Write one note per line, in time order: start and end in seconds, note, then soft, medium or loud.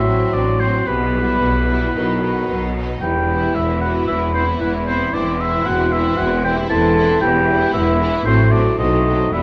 0.00 0.26 A1 medium
0.00 0.26 A2 medium
0.00 0.89 A2 medium
0.00 0.87 F#3 medium
0.00 0.32 E4 medium
0.00 0.87 F#4 medium
0.00 0.35 E5 medium
0.00 0.86 C6 medium
0.06 0.58 F#3 soft
0.06 0.89 F#3 soft
0.06 0.58 C4 soft
0.32 0.80 A1 medium
0.32 0.80 A2 medium
0.32 0.60 D4 medium
0.32 0.89 C5 soft
0.32 0.61 D5 medium
0.59 0.86 F#3 soft
0.59 0.86 C4 soft
0.59 0.87 C4 medium
0.59 0.88 C5 medium
0.86 1.34 B1 medium
0.86 1.35 B2 medium
0.86 1.94 B2 medium
0.86 1.98 E3 medium
0.86 2.72 B3 medium
0.86 1.79 G4 medium
0.86 2.75 B4 medium
0.86 2.72 B5 soft
1.14 1.67 G3 soft
1.14 1.97 G3 soft
1.14 1.67 B3 soft
1.14 1.67 E4 soft
1.41 1.88 B1 medium
1.41 1.89 B2 soft
1.41 2.47 B4 soft
1.68 1.95 G3 soft
1.68 1.93 B3 soft
1.68 1.97 E4 soft
1.68 1.95 E4 soft
1.94 2.42 B1 medium
1.94 3.04 B2 soft
1.94 2.42 B2 medium
1.94 2.76 D#3 soft
1.94 2.21 F#3 soft
1.94 2.21 B3 soft
1.94 2.21 D#4 soft
1.94 2.74 F#4 soft
2.22 2.75 F#3 soft
2.22 4.07 B3 soft
2.22 2.74 B3 soft
2.22 2.74 D#4 soft
2.48 2.96 B1 medium
2.48 2.96 B2 medium
2.48 3.54 B4 soft
2.75 3.02 F#3 soft
2.75 3.02 B3 soft
2.75 3.05 D#4 soft
2.75 3.02 D#4 soft
3.01 3.49 E1 medium
3.01 3.49 E2 medium
3.01 5.13 E3 medium
3.01 4.04 E3 medium
3.01 4.05 E4 soft
3.01 3.52 G4 medium
3.01 3.57 G5 medium
3.01 4.04 B5 medium
3.29 3.81 E3 soft
3.29 3.80 B3 soft
3.29 3.81 E4 soft
3.55 4.02 E1 medium
3.55 4.02 E2 medium
3.55 3.67 E4 medium
3.55 4.60 B4 soft
3.55 3.81 E5 medium
3.81 4.34 E3 medium
3.81 4.33 B3 soft
3.81 4.33 E4 soft
3.81 4.34 E4 soft
3.81 4.07 F#4 medium
3.81 3.93 F#5 medium
4.07 4.55 E1 medium
4.07 4.55 E2 medium
4.07 4.60 E3 medium
4.07 4.34 E4 medium
4.07 4.60 E4 soft
4.07 4.19 E5 medium
4.07 4.60 B5 medium
4.34 4.87 E3 soft
4.34 4.86 B3 soft
4.34 4.61 C4 soft
4.34 4.86 E4 soft
4.34 4.46 C5 medium
4.60 5.08 E1 medium
4.60 5.07 E2 medium
4.60 5.13 E3 medium
4.60 4.72 B3 medium
4.60 5.13 E4 medium
4.60 4.73 B4 medium
4.60 5.16 B4 soft
4.60 5.16 B5 soft
4.87 5.13 E3 soft
4.87 5.13 B3 medium
4.87 5.13 C4 medium
4.87 5.39 E4 soft
4.87 5.12 E4 soft
4.87 5.15 C5 medium
5.12 5.60 E1 medium
5.12 5.60 E2 medium
5.12 5.39 E3 soft
5.12 7.21 E3 medium
5.12 6.67 E3 medium
5.12 5.39 C4 soft
5.12 5.24 D4 medium
5.12 5.38 E4 soft
5.12 6.67 E4 medium
5.12 5.42 D5 medium
5.12 6.70 C6 medium
5.39 5.92 E3 soft
5.39 5.92 C4 soft
5.39 5.65 E4 medium
5.39 5.91 E4 medium
5.39 6.44 E4 soft
5.39 5.67 E5 medium
5.65 6.12 E1 medium
5.65 6.13 E2 medium
5.65 5.91 F#4 medium
5.65 5.94 F#5 medium
5.91 6.44 E3 medium
5.91 6.43 C4 medium
5.91 6.18 E4 medium
5.91 6.44 E4 medium
5.91 6.95 A4 medium
5.91 6.19 E5 medium
6.17 6.64 E1 medium
6.17 6.64 E2 medium
6.17 7.24 C4 soft
6.17 6.29 F#4 medium
6.17 6.44 F#5 medium
6.44 6.94 E3 soft
6.44 6.95 C4 medium
6.44 7.47 E4 soft
6.44 6.95 E4 medium
6.44 6.70 G4 medium
6.44 6.56 G5 medium
6.70 7.16 E1 medium
6.70 7.16 E2 medium
6.70 7.21 E3 medium
6.70 7.21 E4 medium
6.70 7.21 A4 medium
6.70 7.24 C5 soft
6.70 7.20 A5 medium
6.70 7.24 C6 medium
6.95 7.21 E3 medium
6.95 7.21 C4 medium
6.95 7.22 E4 medium
6.95 7.24 A4 soft
7.21 7.68 E1 medium
7.21 7.67 E2 medium
7.21 8.28 E3 medium
7.21 7.73 E3 medium
7.21 7.72 E4 medium
7.21 7.73 G4 medium
7.21 7.72 G5 medium
7.21 7.73 B5 medium
7.47 7.98 E3 medium
7.47 7.99 B3 soft
7.47 7.99 E4 soft
7.47 7.99 E4 medium
7.73 8.19 E1 medium
7.73 8.20 E2 medium
7.73 8.25 E3 medium
7.73 8.28 E4 medium
7.73 8.26 E4 medium
7.73 8.28 B4 medium
7.73 8.24 E5 medium
7.73 8.28 B5 medium
7.99 8.25 E3 medium
7.99 8.25 B3 soft
7.99 8.28 E4 medium
7.99 8.26 E4 medium
8.25 8.72 A1 medium
8.25 8.81 A2 medium
8.25 8.72 A2 medium
8.25 8.51 F#3 medium
8.25 8.51 A3 soft
8.25 8.78 A3 medium
8.25 8.52 C4 medium
8.25 8.51 C4 medium
8.25 8.78 F#4 medium
8.25 8.52 C5 medium
8.25 8.79 C6 medium
8.51 8.77 F#3 soft
8.51 8.78 A3 soft
8.51 8.77 C4 soft
8.51 8.78 D4 medium
8.51 9.04 F#4 soft
8.51 9.05 C5 soft
8.51 8.78 D5 medium
8.78 9.26 B1 medium
8.78 9.35 B2 medium
8.78 9.26 B2 medium
8.78 9.04 F#3 soft
8.78 9.32 A3 medium
8.78 9.04 A3 soft
8.78 9.04 C4 soft
8.78 9.32 D#4 medium
8.78 9.32 F#4 medium
8.78 9.31 D#5 medium
8.78 9.32 C6 medium
9.05 9.32 F#3 soft
9.05 9.32 A3 soft
9.05 9.32 C4 soft
9.05 9.35 F#4 soft
9.05 9.35 C5 soft
9.32 9.43 E1 medium
9.32 9.43 E2 medium
9.32 9.43 E3 soft
9.32 9.43 E3 medium
9.32 9.43 G3 soft
9.32 9.43 G3 medium
9.32 9.43 B3 soft
9.32 9.43 E4 medium
9.32 9.43 E5 medium
9.32 9.43 B5 medium